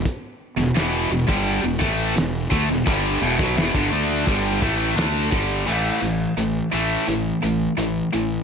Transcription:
<<
  \new Staff \with { instrumentName = "Distorted electric guitar" } { \clef bass \time 4/4 \key a \lydian \tempo 4 = 85 r8. <e, b,>16 <e, b, e>8 <e, b,>16 <g, d g>8 <e, b,>16 <a, e a>8 <e, b,>8 <d a>16 <e, b,>16 | <g, d g>8 <e, b,>16 <b, fis>16 <e, b,>16 <g, d>16 <d a d'>8 <g, d g>8 <a, e a>8 <d a d'>8 <g, d g>8 | <a, e a>8 <a, e>8 <a, e>8 <a, e a>8 <a, e>8 <a, e>8 <a, e>8 <a, e>8 | }
  \new Staff \with { instrumentName = "Fingered electric bass" } { \clef bass \time 4/4 \key a \lydian r8. e,,16 e,,8 e,,16 g,,8 e,,16 a,,8 e,,8 d,16 e,,16 | g,,8 e,,16 b,,16 e,,16 g,,16 d,8 g,,8 a,,8 d,8 g,,8 | a,,8 a,,8 a,,8 a,,8 a,,8 a,,8 a,,8 a,,8 | }
  \new DrumStaff \with { instrumentName = "Drums" } \drummode { \time 4/4 <hh bd>8. sn16 <hh sn>8. bd16 hh8 bd8 <hh sn>8 bd16 sn16 | <hh bd>8. <bd sn>16 <hh sn>16 bd8. <hh bd>8 bd8 <hh sn>8 bd8 | cymc8 hh8 hh8 hh8 hh8 hh8 hh8 hh8 | }
>>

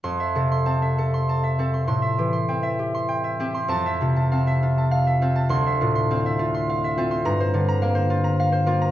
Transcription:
<<
  \new Staff \with { instrumentName = "Harp" } { \time 3/4 \key f \major \tempo 4 = 101 << { c'''2. | c'''2. | a''2. | c'''2. |
bes''2. | } \\ { r16 e''16 a'16 c'''16 a''16 e''16 a'16 c'''16 a''16 e''16 a'16 c'''16~ | c'''16 e''16 g'16 c'''16 g''16 e''16 g'16 c'''16 g''16 e''16 g'16 c'''16~ | c'''16 e''16 f'16 a''16 f''16 e''16 f'16 a''16 f''16 e''16 f'16 a''16~ | a''16 e''16 f'16 c'''16 f''16 e''16 f'16 c'''16 f''16 e''16 f'16 c'''16~ |
c'''16 c''16 f'16 bes''16 f''16 c''16 f'16 bes''16 f''16 c''16 f'16 bes''16 | } >> }
  \new Staff \with { instrumentName = "Harp" } { \clef bass \time 3/4 \key f \major f,8 c8 c'4. c'8 | a,8 e8 c'4. c'8 | f,8 c8 c'4. c'8 | d,8 a,8 c'4. c'8 |
g,8 d8 bes4. bes8 | }
>>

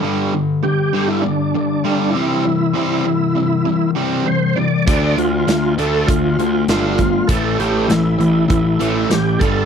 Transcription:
<<
  \new Staff \with { instrumentName = "Tonewheel organ" } { \time 4/4 \key a \minor \tempo 4 = 99 r4 g'8. e'16 d'4. e'8~ | e'2~ e'8 r8 c''8 d''8 | d''8 f'4 a'8 f'4 f'4 | a'8 g'8 e'4 e'4 g'8 a'8 | }
  \new Staff \with { instrumentName = "Distorted electric guitar" } { \clef bass \time 4/4 \key a \minor <g, d g>8 <g, d>8 <g, d>8 <g, d g>8 <g, d>8 <g, d>8 <g, d g>8 <c e g>8 | <c e>8 <c e g>8 <c e>8 <c e>8 <c e>8 <c e g>8 <c e>8 <c e>8 | <d a d'>8 <d a>8 <d a>8 <d a d'>8 <d a>8 <d a>8 <d a d'>8 <d a>8 | <a, e a>8 <a, e a>8 <a, e>8 <a, e>8 <a, e>8 <a, e a>8 <a, e>8 <g, d g>8 | }
  \new Staff \with { instrumentName = "Overdriven electric guitar" } { \clef bass \time 4/4 \key a \minor <g, d g>8 <g, d>8 <g, d>8 <g, d g>8 <g, d>8 <g, d>8 <g, d g>8 <c g c'>8 | <c g>8 <c g c'>8 <c g>8 <c g>8 <c g>8 <c g c'>8 <c g>8 <c g>8 | <d a d'>8 <d a>8 <d a>8 <d a d'>8 <d a>8 <d a>8 <d a d'>8 <d a>8 | <a, e a>8 <a, e a>8 <a, e>8 <a, e>8 <a, e>8 <a, e a>8 <a, e>8 <g, d g>8 | }
  \new Staff \with { instrumentName = "Picked electric bass" } { \clef bass \time 4/4 \key a \minor r1 | r1 | d,8 d,8 d,8 d,8 d,8 d,8 g,,4 | a,,8 a,,8 a,,8 a,,8 a,,8 a,,8 a,,8 g,,8 | }
  \new DrumStaff \with { instrumentName = "Drums" } \drummode { \time 4/4 r4 r4 r4 r4 | r4 r4 r4 r4 | <hh bd>8 hh8 <hh sn>8 hh8 <hh bd>8 hh8 <hh sn>8 <hh bd>8 | <hh bd>8 hh8 <hh sn>8 hh8 <hh bd>8 hh8 <hh sn>8 <hh bd>8 | }
>>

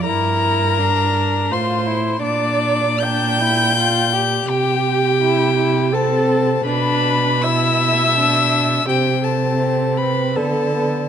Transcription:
<<
  \new Staff \with { instrumentName = "Violin" } { \time 3/4 \key g \dorian \tempo 4 = 82 bes''2 c'''4 | d'''4 g'''2 | \key a \minor g''2 a''4 | b''4 e'''2 |
g''8 a''4 b''8 a''4 | }
  \new Staff \with { instrumentName = "Viola" } { \time 3/4 \key g \dorian bes'2 c''4 | d''4 g''2 | \key a \minor g'2 a'4 | b'4 e''2 |
g'8 a'4 b'8 a'4 | }
  \new Staff \with { instrumentName = "Violin" } { \time 3/4 \key g \dorian e'4 d'4 f'8 e'8 | d'4 d'8 e'8 f'8 g'8~ | \key a \minor g'4 e'8 e'8 c'4 | d'4 e'4 d'4 |
c'2 b8 b8 | }
  \new Staff \with { instrumentName = "Cello" } { \clef bass \time 3/4 \key g \dorian g,2 a,4 | bes,2. | \key a \minor c2. | b,2. |
c2 d4 | }
>>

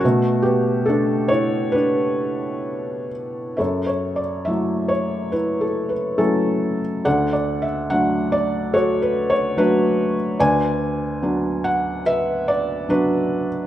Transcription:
<<
  \new Staff \with { instrumentName = "Felt piano" } { \time 4/4 \key b \minor \tempo 4 = 71 << { fis'8 g'8 a'8 cis''8 b'4. r8 | \key fis \minor \tuplet 3/2 { e''8 cis''8 d''8 } e''8 cis''8 \tuplet 3/2 { b'8 a'8 b'8 } a'8. r16 | \tuplet 3/2 { fis''8 d''8 e''8 } fis''8 d''8 \tuplet 3/2 { cis''8 b'8 cis''8 } b'8. r16 | gis''4. fis''8 e''8 d''8 b'8. r16 | } \\ { a8 b8 d'8 e'8 d'4. r8 | <a' cis''>2 e'4 <cis' e'>4 | <a' d''>2 <fis' a'>4 fis'4 | <b' d''>2 b'4 <d' fis'>4 | } >> }
  \new Staff \with { instrumentName = "Felt piano" } { \time 4/4 \key b \minor b,4 <a b>2. | \key fis \minor fis,4 <fis a e'>4 r4 <fis a>4 | d,4 <fis a d'>4 r4 <fis a d'>4 | d,4 <fis b d'>4 r4 <fis b>4 | }
>>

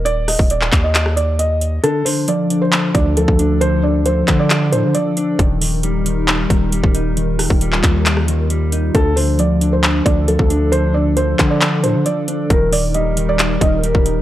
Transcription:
<<
  \new Staff \with { instrumentName = "Felt piano" } { \time 4/4 \key d \phrygian \tempo 4 = 135 d''8 ees''8 d''8. ees''8. d''8 ees''4 | a'8 c''8 d''8. c''8. d''8 a'4 | c''8 d''8 c''8. d''8. c''8 d''4 | r1 |
r1 | a'8 c''8 d''8. c''8. d''8 a'4 | c''8 d''8 c''8. d''8. c''8 d''4 | bes'8 d''8 ees''8. d''8. ees''8 bes'4 | }
  \new Staff \with { instrumentName = "Analog synth pad" } { \time 4/4 \key d \phrygian << { r1 | <f a'>1~ | <f a'>1 | <g bes'>1~ |
<g bes'>1 | <f a'>1~ | <f a'>1 | <g bes'>1 | } \\ { r1 | d'1~ | d'1 | ees'1 |
f'1 | d'1~ | d'1 | ees'1 | } >> }
  \new Staff \with { instrumentName = "Clean electric guitar" } { \clef bass \time 4/4 \key d \phrygian r1 | d8 d8 f8 d4 d8 f8 d'8 | d8 d8 f8 d4 d8 f8 d'8 | ees8 ees8 g8 ees4 ees8 g8 ees'8 |
ees8 ees8 g8 ees4 ees8 g8 ees'8 | d8 d8 f8 d4 d8 f8 d'8 | d8 d8 f8 d4 d8 f8 d'8 | ees8 ees8 g8 ees4 ees8 g8 ees'8 | }
  \new Staff \with { instrumentName = "808-style bass" } { \clef bass \time 4/4 \key d \phrygian ees,,8. ees,,8. ees,2~ ees,8 | r2 r8 d,8. d,8.~ | d,4. d4 a,16 d16 r4 | ees,,2~ ees,,8 ees,,8. ees,,8.~ |
ees,,8. ees,,8. ees,2~ ees,8 | d,2~ d,8 d,8. d,8.~ | d,4. d4 a,16 d16 r4 | ees,,2~ ees,,8 ees,,8. ees,,8. | }
  \new DrumStaff \with { instrumentName = "Drums" } \drummode { \time 4/4 hh8 <hho ss>16 bd16 hh16 hc16 <hc hh bd>8 <hc hh>16 ss16 hh8 hh8 hh8 | hh8 hho8 hh8 hh8 <hc hh>8 <hh bd>8 hh16 bd16 hh8 | hh4 hh8 <hc hh bd>8 <hc hh>8 hh8 hh8 hh8 | <hh bd>8 hho8 hh8 hh8 <hc hh>8 <hh bd>8 hh16 bd16 hh8 |
hh8 <hho ss>16 bd16 hh16 hc16 <hc hh bd>8 <hc hh>16 ss16 hh8 hh8 hh8 | <hh bd>8 hho8 hh8 hh8 <hc hh>8 <hh bd>8 hh16 bd16 hh8 | hh4 hh8 <hc hh bd>8 <hc hh>8 hh8 hh8 hh8 | <hh bd>8 hho8 hh8 hh8 <hc hh>8 <hh bd>8 hh16 bd16 hh8 | }
>>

